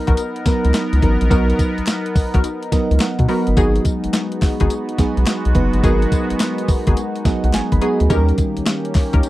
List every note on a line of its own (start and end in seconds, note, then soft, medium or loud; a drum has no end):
0.00 0.46 F#3 loud
0.00 0.46 B3 medium
0.00 3.53 B3 medium
0.00 0.46 D#4 medium
0.00 8.06 D#4 medium
0.00 0.47 A#4 loud
0.00 3.54 A#4 medium
0.07 0.16 B1 medium
0.07 0.21 B3 medium
0.07 0.21 D#4 medium
0.07 0.21 F#4 medium
0.07 0.21 A#4 medium
0.07 kick loud
0.07 closed hi-hat medium
0.17 closed hi-hat medium
0.17 tambourine medium
0.36 closed hi-hat medium
0.46 0.53 C#2 soft
0.46 0.91 F#3 medium
0.46 0.91 B3 medium
0.46 0.91 D#4 medium
0.46 0.91 A#4 medium
0.46 kick loud
0.46 snare medium
0.46 closed hi-hat medium
0.46 tambourine medium
0.65 0.72 C#2 medium
0.65 closed hi-hat medium
0.74 snare loud
0.74 clap medium
0.74 closed hi-hat medium
0.74 tambourine medium
0.93 1.01 C#2 loud
0.93 closed hi-hat medium
1.02 1.17 A1 loud
1.02 1.25 F#3 medium
1.02 1.26 B3 medium
1.02 1.26 D#4 medium
1.02 1.26 A#4 medium
1.02 kick loud
1.02 closed hi-hat medium
1.21 1.29 A#1 loud
1.21 closed hi-hat medium
1.30 1.53 B1 loud
1.30 2.13 F#3 loud
1.30 1.57 B3 medium
1.30 2.14 B3 medium
1.30 1.57 D#4 medium
1.30 2.14 D#4 medium
1.30 1.58 F#4 medium
1.30 1.58 A#4 loud
1.30 2.14 A#4 loud
1.30 kick loud
1.30 closed hi-hat medium
1.30 tambourine medium
1.50 closed hi-hat soft
1.59 kick loud
1.59 closed hi-hat medium
1.59 tambourine medium
1.78 1.82 B1 medium
1.78 closed hi-hat medium
1.87 snare loud
1.87 clap medium
1.87 closed hi-hat medium
1.87 tambourine loud
2.06 closed hi-hat medium
2.16 2.23 B1 medium
2.16 kick loud
2.16 open hi-hat medium
2.16 tambourine medium
2.34 2.42 B1 medium
2.34 2.48 B3 medium
2.34 2.48 D#4 medium
2.34 2.48 F#4 medium
2.34 2.48 A#4 medium
2.34 kick loud
2.34 closed hi-hat medium
2.44 closed hi-hat medium
2.44 tambourine medium
2.63 closed hi-hat medium
2.72 2.80 C#2 medium
2.72 3.17 F#3 medium
2.72 3.17 B3 medium
2.72 3.17 D#4 medium
2.72 3.18 A#4 medium
2.72 2.99 D#5 medium
2.72 kick loud
2.72 snare medium
2.72 closed hi-hat medium
2.72 tambourine medium
2.91 2.99 C#2 loud
2.91 closed hi-hat medium
3.00 3.27 F#5 medium
3.00 snare loud
3.00 clap medium
3.00 closed hi-hat medium
3.00 tambourine medium
3.19 3.27 B2 loud
3.19 kick loud
3.19 closed hi-hat medium
3.28 3.52 F#3 medium
3.28 3.49 B3 medium
3.28 3.52 B3 medium
3.28 3.49 D#4 medium
3.28 3.52 D#4 medium
3.28 3.49 F#4 medium
3.28 3.49 A#4 medium
3.28 3.52 A#4 medium
3.28 3.55 B5 medium
3.28 open hi-hat medium
3.47 3.55 G1 medium
3.47 closed hi-hat medium
3.57 3.79 G#1 loud
3.57 4.40 F#3 medium
3.57 8.06 G#3 medium
3.57 3.84 B3 medium
3.57 4.40 B3 medium
3.57 8.06 B3 medium
3.57 3.84 D#4 medium
3.57 4.40 D#4 medium
3.57 3.84 F#4 medium
3.57 8.06 F#4 medium
3.57 3.84 G#4 loud
3.57 4.40 G#4 loud
3.57 kick loud
3.57 closed hi-hat medium
3.57 tambourine medium
3.76 closed hi-hat soft
3.85 kick loud
3.85 closed hi-hat medium
3.85 tambourine medium
4.04 4.08 G#1 medium
4.04 closed hi-hat medium
4.13 snare loud
4.13 clap loud
4.13 closed hi-hat medium
4.13 tambourine loud
4.32 closed hi-hat medium
4.42 4.50 G#1 soft
4.42 kick loud
4.42 snare medium
4.42 clap medium
4.42 open hi-hat medium
4.42 tambourine medium
4.60 4.69 G#1 medium
4.60 4.74 B3 medium
4.60 4.74 D#4 medium
4.60 4.74 F#4 medium
4.60 4.74 G#4 medium
4.60 kick loud
4.60 closed hi-hat medium
4.70 closed hi-hat medium
4.70 tambourine medium
4.89 closed hi-hat medium
4.98 5.06 B1 soft
4.98 5.44 F#3 medium
4.98 5.44 B3 medium
4.98 5.44 D#4 medium
4.98 5.44 G#4 medium
4.98 kick medium
4.98 snare medium
4.98 closed hi-hat medium
4.98 tambourine medium
5.17 5.25 B1 medium
5.17 closed hi-hat soft
5.27 snare loud
5.27 clap medium
5.27 closed hi-hat medium
5.27 tambourine medium
5.45 5.53 B1 medium
5.45 closed hi-hat medium
5.55 5.70 F#1 loud
5.55 5.78 F#3 medium
5.55 5.78 B3 medium
5.55 5.78 D#4 medium
5.55 5.78 B4 loud
5.55 kick loud
5.55 closed hi-hat medium
5.73 5.81 G1 loud
5.73 closed hi-hat medium
5.83 6.06 G#1 loud
5.83 6.67 F#3 medium
5.83 6.10 B3 medium
5.83 6.67 B3 medium
5.83 6.10 D#4 medium
5.83 6.67 D#4 medium
5.83 6.11 F#4 medium
5.83 6.11 G#4 loud
5.83 6.67 A#4 loud
5.83 kick loud
5.83 closed hi-hat medium
5.83 tambourine medium
6.02 closed hi-hat soft
6.12 kick loud
6.12 closed hi-hat medium
6.12 tambourine medium
6.30 6.34 G#1 medium
6.30 closed hi-hat medium
6.40 snare loud
6.40 clap loud
6.40 closed hi-hat medium
6.40 tambourine loud
6.58 closed hi-hat medium
6.68 6.76 G#1 soft
6.68 kick loud
6.68 open hi-hat medium
6.68 tambourine medium
6.87 6.95 G#1 medium
6.87 7.01 B3 medium
6.87 7.01 D#4 medium
6.87 7.01 F#4 medium
6.87 7.01 G#4 medium
6.87 kick loud
6.87 closed hi-hat medium
6.97 closed hi-hat medium
6.97 tambourine medium
7.16 closed hi-hat medium
7.25 7.33 B1 medium
7.25 7.70 F#3 medium
7.25 7.70 B3 medium
7.25 7.70 D#4 medium
7.25 7.71 G#4 medium
7.25 7.43 D#5 medium
7.25 kick loud
7.25 snare medium
7.25 closed hi-hat medium
7.25 tambourine medium
7.44 7.52 B1 medium
7.44 7.53 F#5 medium
7.44 closed hi-hat medium
7.54 7.62 G#1 soft
7.54 7.71 G#5 medium
7.54 snare loud
7.54 clap medium
7.54 closed hi-hat medium
7.54 tambourine loud
7.72 7.80 G#1 loud
7.72 8.08 B5 medium
7.72 kick medium
7.72 closed hi-hat medium
7.81 8.05 F#3 medium
7.81 8.02 B3 medium
7.81 8.05 B3 medium
7.81 8.02 D#4 medium
7.81 8.05 D#4 medium
7.81 8.02 F#4 medium
7.81 8.02 G#4 loud
7.81 8.05 G#4 medium
7.81 closed hi-hat medium
8.00 8.08 D2 medium
8.00 closed hi-hat medium
8.10 8.32 D#2 loud
8.10 9.29 D#3 medium
8.10 8.19 E3 medium
8.10 9.29 A#3 medium
8.10 8.37 C#4 medium
8.10 9.29 C#4 medium
8.10 8.93 C#4 medium
8.10 8.37 D#4 medium
8.10 8.93 D#4 medium
8.10 8.37 G4 medium
8.10 9.29 G4 medium
8.10 8.37 A#4 loud
8.10 8.94 A#4 loud
8.10 kick loud
8.10 closed hi-hat medium
8.10 tambourine medium
8.17 8.96 G3 medium
8.29 closed hi-hat soft
8.38 kick loud
8.38 closed hi-hat medium
8.38 tambourine medium
8.57 8.61 C#2 medium
8.57 closed hi-hat medium
8.66 snare loud
8.66 clap loud
8.66 closed hi-hat medium
8.66 tambourine loud
8.85 closed hi-hat medium
8.95 9.03 C#2 medium
8.95 kick loud
8.95 snare medium
8.95 clap medium
8.95 open hi-hat medium
8.95 tambourine medium
9.13 9.22 C#2 medium
9.13 9.27 C#4 medium
9.13 9.27 D#4 medium
9.13 9.27 G4 medium
9.13 9.27 A#4 medium
9.13 kick loud
9.13 closed hi-hat medium
9.23 closed hi-hat medium
9.23 tambourine medium